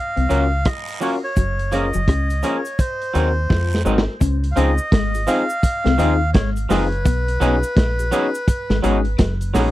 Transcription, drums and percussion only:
0.17 closed hi-hat
0.30 closed hi-hat, cabasa
0.65 kick, cross-stick, closed hi-hat, long guiro
0.88 closed hi-hat, cabasa
1.01 open hi-hat, cabasa
1.36 kick, closed hi-hat, cabasa
1.59 closed hi-hat
1.72 closed hi-hat, cabasa
1.93 cabasa
2.08 kick, cross-stick, closed hi-hat
2.30 closed hi-hat, cabasa
2.43 closed hi-hat, cabasa
2.65 closed hi-hat, cabasa
2.79 kick, closed hi-hat, cabasa
3.02 closed hi-hat
3.15 closed hi-hat, cabasa
3.50 kick, snare, long guiro
3.72 snare, cabasa
3.86 cabasa
3.98 snare
4.21 kick, closed hi-hat, cabasa
4.44 closed hi-hat
4.57 closed hi-hat, cabasa
4.78 cabasa
4.92 kick, snare, closed hi-hat
5.14 closed hi-hat, cabasa
5.27 closed hi-hat, cabasa
5.50 cabasa
5.63 kick, closed hi-hat, cabasa
5.86 snare, closed hi-hat
5.99 closed hi-hat, cabasa
6.34 kick, snare, closed hi-hat
6.56 closed hi-hat, cabasa
6.70 snare, open hi-hat, cabasa
6.92 closed hi-hat
7.05 kick, closed hi-hat, cabasa
7.28 closed hi-hat
7.41 closed hi-hat, cabasa
7.63 closed hi-hat, cabasa
7.77 kick, snare, closed hi-hat
7.99 closed hi-hat, cabasa
8.12 closed hi-hat, cabasa
8.35 closed hi-hat, cabasa
8.48 kick, closed hi-hat, cabasa
8.70 snare, closed hi-hat
8.84 closed hi-hat, cabasa
9.05 closed hi-hat
9.18 kick, snare, closed hi-hat
9.41 closed hi-hat, cabasa
9.54 snare, open hi-hat, cabasa

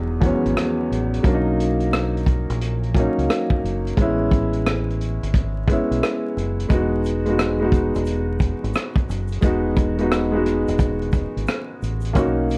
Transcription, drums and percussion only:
0.22 kick, closed hi-hat
0.46 closed hi-hat
0.57 cross-stick, closed hi-hat
0.92 closed hi-hat
1.14 closed hi-hat
1.24 kick, closed hi-hat
1.60 closed hi-hat
1.80 closed hi-hat
1.93 cross-stick, closed hi-hat
2.17 closed hi-hat
2.26 kick, closed hi-hat
2.50 closed hi-hat
2.62 closed hi-hat
2.84 closed hi-hat
2.95 kick, closed hi-hat
3.19 closed hi-hat
3.30 cross-stick, closed hi-hat
3.50 kick
3.66 closed hi-hat
3.87 closed hi-hat
3.97 kick, closed hi-hat
4.32 kick, closed hi-hat
4.53 closed hi-hat
4.67 cross-stick, closed hi-hat
4.90 closed hi-hat
5.01 closed hi-hat
5.23 closed hi-hat
5.34 kick, closed hi-hat
5.67 kick, closed hi-hat
5.92 closed hi-hat
6.03 cross-stick, closed hi-hat
6.38 closed hi-hat
6.60 closed hi-hat
6.70 kick, closed hi-hat, shaker
7.04 closed hi-hat, shaker
7.26 closed hi-hat
7.39 cross-stick, closed hi-hat, shaker
7.72 kick, closed hi-hat, shaker
7.95 closed hi-hat, shaker
8.06 closed hi-hat, shaker
8.39 kick, closed hi-hat, shaker
8.64 closed hi-hat
8.73 cross-stick, closed hi-hat, shaker
8.96 kick, closed hi-hat
9.09 closed hi-hat, shaker
9.28 shaker
9.32 closed hi-hat
9.42 kick, closed hi-hat, shaker
9.77 kick, closed hi-hat, shaker
9.99 closed hi-hat
10.12 cross-stick, closed hi-hat, shaker
10.46 cross-stick, closed hi-hat, shaker
10.68 closed hi-hat, shaker
10.79 kick, closed hi-hat, shaker
11.02 closed hi-hat
11.12 kick, closed hi-hat, shaker
11.37 closed hi-hat
11.47 cross-stick, closed hi-hat, shaker
11.82 closed hi-hat, shaker
12.01 shaker
12.05 closed hi-hat
12.15 kick, closed hi-hat, shaker
12.50 closed hi-hat, shaker

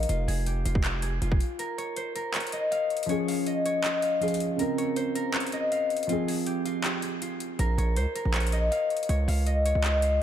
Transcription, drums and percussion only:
0.03 closed hi-hat
0.09 closed hi-hat
0.28 open hi-hat
0.46 closed hi-hat
0.66 closed hi-hat
0.75 kick
0.84 clap, closed hi-hat
1.02 closed hi-hat
1.22 closed hi-hat
1.32 kick
1.40 closed hi-hat
1.59 closed hi-hat
1.78 closed hi-hat
1.97 closed hi-hat
2.16 closed hi-hat
2.34 clap, closed hi-hat
2.40 closed hi-hat
2.47 closed hi-hat
2.52 closed hi-hat
2.72 closed hi-hat
2.90 closed hi-hat
2.97 closed hi-hat
3.03 closed hi-hat
3.09 closed hi-hat
3.28 open hi-hat
3.46 closed hi-hat
3.66 closed hi-hat
3.84 clap, closed hi-hat
4.02 closed hi-hat
4.22 closed hi-hat
4.28 closed hi-hat
4.34 closed hi-hat
4.40 closed hi-hat
4.59 closed hi-hat
4.78 closed hi-hat
4.96 closed hi-hat
5.16 closed hi-hat
5.34 clap, closed hi-hat
5.40 closed hi-hat
5.47 closed hi-hat
5.52 closed hi-hat
5.72 closed hi-hat
5.90 closed hi-hat
5.97 closed hi-hat
6.03 closed hi-hat
6.09 closed hi-hat
6.28 open hi-hat
6.46 closed hi-hat
6.66 closed hi-hat
6.84 clap, closed hi-hat
7.02 closed hi-hat
7.22 closed hi-hat
7.40 closed hi-hat
7.59 closed hi-hat
7.78 closed hi-hat
7.96 closed hi-hat
8.16 closed hi-hat
8.34 clap, closed hi-hat
8.40 closed hi-hat
8.47 closed hi-hat
8.52 closed hi-hat
8.72 closed hi-hat
8.90 closed hi-hat
8.97 closed hi-hat
9.03 closed hi-hat
9.09 closed hi-hat
9.28 open hi-hat
9.47 closed hi-hat
9.66 closed hi-hat
9.84 clap, closed hi-hat
10.02 closed hi-hat

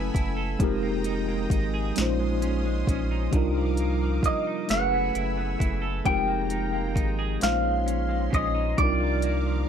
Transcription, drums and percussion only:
0.15 kick, closed hi-hat
0.60 kick, closed hi-hat
1.04 closed hi-hat
1.50 kick, closed hi-hat
1.96 snare, closed hi-hat
2.42 closed hi-hat
2.87 kick, closed hi-hat
3.33 kick, closed hi-hat
3.77 closed hi-hat
4.23 kick, closed hi-hat
4.69 snare, closed hi-hat
5.15 closed hi-hat
5.60 kick, closed hi-hat
6.05 kick, closed hi-hat
6.50 closed hi-hat
6.96 kick, closed hi-hat
7.41 snare, closed hi-hat
7.88 closed hi-hat
8.33 kick, closed hi-hat
8.78 kick, closed hi-hat
9.22 closed hi-hat

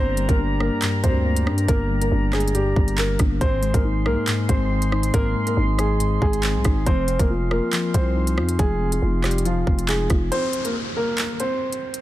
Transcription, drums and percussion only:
0.17 closed hi-hat
0.29 kick, closed hi-hat
0.60 cross-stick
0.82 clap, closed hi-hat
1.04 kick, closed hi-hat
1.36 closed hi-hat
1.47 cross-stick
1.58 closed hi-hat
1.68 kick, closed hi-hat
2.02 closed hi-hat
2.33 cross-stick, clap, closed hi-hat
2.40 closed hi-hat
2.48 closed hi-hat
2.55 closed hi-hat
2.76 kick
2.88 closed hi-hat
2.98 clap, closed hi-hat
3.19 kick, cross-stick, closed hi-hat
3.41 kick, closed hi-hat
3.63 closed hi-hat
3.74 kick, closed hi-hat
4.06 cross-stick
4.27 clap, closed hi-hat
4.49 kick, closed hi-hat
4.82 closed hi-hat
4.92 cross-stick
5.03 closed hi-hat
5.14 kick, closed hi-hat
5.47 closed hi-hat
5.79 cross-stick, closed hi-hat
6.00 closed hi-hat
6.22 kick
6.33 closed hi-hat
6.43 clap, closed hi-hat
6.64 kick, cross-stick, closed hi-hat
6.86 kick, closed hi-hat
7.08 closed hi-hat
7.19 kick, closed hi-hat
7.51 cross-stick
7.73 clap, closed hi-hat
7.94 kick, closed hi-hat
8.27 closed hi-hat
8.38 cross-stick
8.49 closed hi-hat
8.59 kick, closed hi-hat
8.92 closed hi-hat
9.24 cross-stick, clap, closed hi-hat
9.31 closed hi-hat
9.38 closed hi-hat
9.45 closed hi-hat
9.67 kick
9.79 closed hi-hat
9.88 clap, closed hi-hat
10.10 kick, cross-stick, closed hi-hat
10.32 closed hi-hat
10.53 closed hi-hat
10.65 closed hi-hat
11.18 clap, closed hi-hat
11.40 closed hi-hat
11.73 closed hi-hat
11.94 closed hi-hat

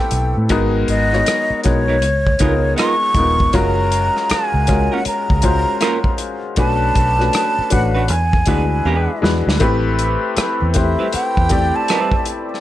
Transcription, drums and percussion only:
0.11 closed hi-hat
0.49 kick, closed hi-hat
0.88 closed hi-hat
1.13 cross-stick
1.26 cross-stick, closed hi-hat
1.64 kick, cross-stick, closed hi-hat
2.02 closed hi-hat
2.27 kick
2.39 kick, closed hi-hat
2.78 cross-stick, closed hi-hat
3.14 kick, closed hi-hat
3.40 kick
3.53 kick, closed hi-hat
3.92 closed hi-hat
4.17 cross-stick
4.30 cross-stick, closed hi-hat
4.67 kick, cross-stick, closed hi-hat
5.05 closed hi-hat
5.30 kick
5.42 kick, closed hi-hat
5.81 cross-stick, closed hi-hat
6.04 kick
6.18 closed hi-hat
6.56 kick, closed hi-hat
6.95 kick, closed hi-hat
7.20 cross-stick
7.33 cross-stick, closed hi-hat
7.70 kick, closed hi-hat
8.08 closed hi-hat
8.33 kick
8.46 kick, closed hi-hat
9.24 snare
9.49 snare
9.60 kick, closed hi-hat
9.99 closed hi-hat
10.37 cross-stick, closed hi-hat
10.74 kick, cross-stick, closed hi-hat
11.13 closed hi-hat
11.37 kick
11.49 kick, closed hi-hat
11.88 cross-stick, closed hi-hat
12.12 kick
12.25 closed hi-hat
12.54 cross-stick

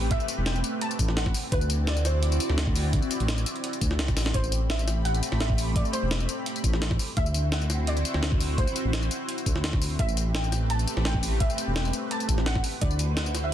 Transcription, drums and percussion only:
0.11 kick, closed hi-hat
0.20 tambourine
0.28 closed hi-hat, tambourine
0.46 snare, closed hi-hat
0.56 tambourine
0.64 closed hi-hat, tambourine
0.81 closed hi-hat
0.91 closed hi-hat, tambourine
0.99 kick, closed hi-hat, tambourine
1.08 snare
1.17 snare, closed hi-hat
1.26 kick, snare
1.34 open hi-hat, tambourine
1.52 kick, closed hi-hat
1.61 tambourine
1.70 closed hi-hat, tambourine
1.87 snare, closed hi-hat
1.97 tambourine
2.05 snare, closed hi-hat, tambourine
2.23 closed hi-hat
2.32 closed hi-hat, tambourine
2.40 closed hi-hat, tambourine
2.50 snare
2.58 snare, closed hi-hat
2.67 kick
2.75 open hi-hat, tambourine
2.93 kick, closed hi-hat
3.02 tambourine
3.11 closed hi-hat, tambourine
3.20 closed hi-hat
3.28 snare, closed hi-hat
3.38 tambourine
3.46 closed hi-hat, tambourine
3.56 closed hi-hat
3.64 closed hi-hat
3.73 closed hi-hat, tambourine
3.81 kick, closed hi-hat, tambourine
3.91 snare
3.99 snare, closed hi-hat
4.08 kick, snare, tambourine
4.17 snare, open hi-hat, tambourine
4.26 snare
4.34 kick, closed hi-hat
4.44 tambourine
4.52 closed hi-hat, tambourine
4.70 snare, closed hi-hat
4.79 tambourine
4.88 snare, closed hi-hat, tambourine
5.05 closed hi-hat
5.14 closed hi-hat, tambourine
5.23 closed hi-hat, tambourine
5.32 snare
5.40 snare, closed hi-hat
5.50 kick
5.58 open hi-hat, tambourine
5.76 kick, closed hi-hat
5.85 tambourine
5.93 closed hi-hat, tambourine
6.11 snare, closed hi-hat
6.20 tambourine
6.29 closed hi-hat, tambourine
6.46 closed hi-hat
6.56 closed hi-hat, tambourine
6.64 kick, closed hi-hat, tambourine
6.73 snare
6.82 snare, closed hi-hat
6.91 kick, snare
6.99 open hi-hat, tambourine
7.17 kick, closed hi-hat
7.26 tambourine
7.34 closed hi-hat, tambourine
7.52 snare, closed hi-hat
7.61 tambourine
7.70 snare, closed hi-hat, tambourine
7.87 closed hi-hat
7.97 closed hi-hat, tambourine
8.05 closed hi-hat, tambourine
8.14 snare
8.23 snare, closed hi-hat
8.32 kick
8.40 open hi-hat, tambourine
8.58 kick, closed hi-hat
8.67 tambourine
8.76 closed hi-hat, tambourine
8.93 snare, closed hi-hat
9.03 tambourine
9.11 closed hi-hat, tambourine
9.29 closed hi-hat
9.38 closed hi-hat, tambourine
9.46 kick, closed hi-hat, tambourine
9.56 snare
9.64 snare, closed hi-hat
9.73 kick, snare
9.82 open hi-hat, tambourine
9.99 kick, closed hi-hat
10.09 tambourine
10.17 closed hi-hat, tambourine
10.35 snare, closed hi-hat
10.44 tambourine
10.52 snare, closed hi-hat, tambourine
10.70 closed hi-hat
10.79 closed hi-hat, tambourine
10.88 closed hi-hat, tambourine
10.97 snare
11.05 snare, closed hi-hat
11.14 kick
11.23 open hi-hat, tambourine
11.40 kick, closed hi-hat
11.50 tambourine
11.58 closed hi-hat, tambourine
11.76 snare, closed hi-hat
11.85 tambourine
11.93 closed hi-hat, tambourine
12.11 closed hi-hat
12.20 closed hi-hat, tambourine
12.29 kick, closed hi-hat, tambourine
12.38 snare
12.46 snare, closed hi-hat
12.55 kick, snare
12.64 open hi-hat, tambourine
12.81 kick, closed hi-hat
12.91 tambourine
12.99 closed hi-hat, tambourine
13.17 snare, closed hi-hat
13.26 tambourine
13.35 snare, closed hi-hat, tambourine

